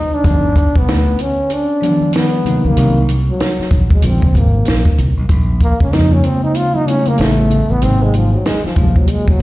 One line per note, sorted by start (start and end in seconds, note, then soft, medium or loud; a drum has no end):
0.00 0.16 D#4 loud
0.12 0.79 D4 loud
0.12 shaker medium
0.23 0.66 G1 loud
0.23 0.48 D3 medium
0.23 0.48 F3 medium
0.23 0.49 G3 medium
0.23 0.49 B3 medium
0.23 0.49 D#4 medium
0.23 kick loud
0.23 closed hi-hat medium
0.23 shaker medium
0.43 shaker medium
0.56 kick medium
0.56 closed hi-hat medium
0.56 shaker soft
0.75 0.86 B1 medium
0.75 1.23 B3 loud
0.75 kick medium
0.75 shaker soft
0.87 1.14 D2 medium
0.87 snare loud
0.87 closed hi-hat medium
0.87 shaker medium
1.06 shaker soft
1.19 1.55 C#4 medium
1.19 closed hi-hat medium
1.19 low conga medium
1.19 shaker soft
1.38 shaker soft
1.50 2.15 D4 loud
1.50 closed hi-hat medium
1.50 shaker medium
1.69 shaker soft
1.81 2.72 F3 medium
1.81 2.72 G3 medium
1.81 2.72 B3 medium
1.81 1.83 D4 medium
1.81 1.91 D4 medium
1.81 closed hi-hat medium
1.81 shaker soft
1.90 2.44 D#3 medium
2.01 high conga medium
2.01 shaker soft
2.13 2.68 B3 loud
2.13 snare loud
2.13 closed hi-hat medium
2.13 high conga soft
2.13 shaker medium
2.32 shaker soft
2.44 2.75 C3 medium
2.44 2.75 D#3 medium
2.44 2.76 F#3 medium
2.44 2.77 A#3 medium
2.44 2.78 D#4 medium
2.44 closed hi-hat medium
2.44 high conga soft
2.44 low conga medium
2.44 shaker soft
2.64 2.75 C#2 medium
2.64 3.01 A#3 medium
2.64 shaker soft
2.76 3.29 C2 loud
2.76 3.00 C3 medium
2.76 3.01 D#3 medium
2.76 3.01 F#3 medium
2.76 3.02 A#3 medium
2.76 3.02 D#4 medium
2.76 closed hi-hat medium
2.76 shaker medium
2.96 shaker medium
3.08 closed hi-hat medium
3.08 shaker soft
3.27 3.88 F#3 medium
3.27 shaker soft
3.40 snare loud
3.40 closed hi-hat medium
3.40 shaker medium
3.59 muted fingered electric bass stroke soft
3.59 snare soft
3.59 shaker soft
3.71 3.97 A#1 medium
3.71 kick medium
3.71 closed hi-hat medium
3.71 low conga medium
3.71 shaker soft
3.90 4.08 G#3 medium
3.90 kick medium
3.90 shaker soft
4.02 4.30 A#1 loud
4.02 4.42 C#3 medium
4.02 4.42 F3 medium
4.02 4.42 G#3 medium
4.02 4.43 A#3 medium
4.02 4.43 F4 medium
4.02 closed hi-hat medium
4.02 shaker medium
4.07 4.39 C4 loud
4.22 kick medium
4.22 shaker soft
4.35 4.61 G#1 medium
4.35 4.99 A#3 medium
4.35 kick medium
4.35 closed hi-hat medium
4.35 shaker soft
4.54 high conga medium
4.54 shaker soft
4.65 4.82 A#1 medium
4.65 snare loud
4.65 closed hi-hat medium
4.65 high conga soft
4.65 shaker medium
4.85 kick medium
4.85 shaker soft
4.98 5.14 C2 medium
4.98 closed hi-hat medium
4.98 high conga soft
4.98 low conga medium
4.98 shaker soft
5.17 5.28 B1 medium
5.17 shaker soft
5.29 5.71 A#1 loud
5.29 kick loud
5.29 closed hi-hat medium
5.29 shaker medium
5.48 shaker soft
5.61 5.83 A#3 medium
5.61 kick medium
5.61 closed hi-hat medium
5.61 shaker soft
5.80 5.91 C#2 medium
5.80 5.95 C#4 medium
5.80 kick medium
5.80 shaker soft
5.91 6.19 F2 medium
5.91 6.82 C#3 medium
5.91 6.82 G#3 medium
5.91 6.82 A#3 medium
5.91 6.83 C4 medium
5.91 6.14 D#4 medium
5.91 6.83 F4 medium
5.91 snare loud
5.91 closed hi-hat medium
5.91 low conga medium
5.91 shaker medium
6.11 6.26 C#4 medium
6.11 high conga medium
6.11 shaker soft
6.23 6.43 C4 medium
6.23 closed hi-hat medium
6.23 low conga medium
6.23 shaker soft
6.44 6.58 D#4 medium
6.44 shaker soft
6.54 6.77 F4 loud
6.54 closed hi-hat medium
6.54 shaker medium
6.74 6.90 D#4 loud
6.74 high conga medium
6.74 shaker soft
6.86 7.16 C#3 medium
6.86 7.17 G3 medium
6.86 7.18 A3 medium
6.86 7.19 B3 medium
6.86 7.09 C#4 loud
6.86 7.19 E4 medium
6.86 closed hi-hat medium
6.86 shaker soft
7.05 7.21 A#3 medium
7.05 closed hi-hat soft
7.05 high conga medium
7.05 shaker soft
7.18 7.61 A1 medium
7.18 7.58 C#3 medium
7.18 7.58 G3 medium
7.18 7.58 A3 medium
7.18 7.72 A3 medium
7.18 7.59 B3 medium
7.18 7.59 E4 medium
7.18 snare loud
7.18 closed hi-hat medium
7.18 shaker medium
7.38 shaker soft
7.50 closed hi-hat medium
7.50 low conga medium
7.50 shaker soft
7.70 7.80 A1 medium
7.70 7.85 B3 loud
7.70 shaker soft
7.81 8.35 G#1 loud
7.81 8.28 C3 medium
7.81 8.29 F#3 medium
7.81 8.29 G#3 medium
7.81 8.29 A#3 medium
7.81 8.04 C4 loud
7.81 8.30 D#4 medium
7.81 closed hi-hat medium
7.81 shaker medium
8.01 8.17 G#3 medium
8.01 shaker soft
8.13 8.34 F3 medium
8.13 closed hi-hat medium
8.13 shaker soft
8.32 8.45 F#3 medium
8.32 shaker soft
8.45 8.64 G#3 medium
8.45 snare loud
8.45 closed hi-hat medium
8.45 low conga medium
8.45 shaker medium
8.64 8.77 F3 medium
8.64 muted fingered electric bass stroke soft
8.64 snare soft
8.64 high conga medium
8.64 shaker soft
8.76 9.03 A#1 medium
8.76 8.84 B2 medium
8.76 8.99 F3 medium
8.76 9.42 F#3 medium
8.76 9.42 G#3 medium
8.76 9.42 A#3 medium
8.76 9.42 F4 medium
8.76 kick medium
8.76 closed hi-hat medium
8.76 low conga medium
8.76 shaker soft
8.82 9.42 C3 medium
8.96 9.12 F#3 medium
8.96 kick medium
8.96 shaker soft
9.07 9.31 G#3 loud
9.07 closed hi-hat loud
9.07 shaker medium
9.27 9.42 F#3 medium
9.27 kick medium
9.27 high conga medium
9.27 shaker soft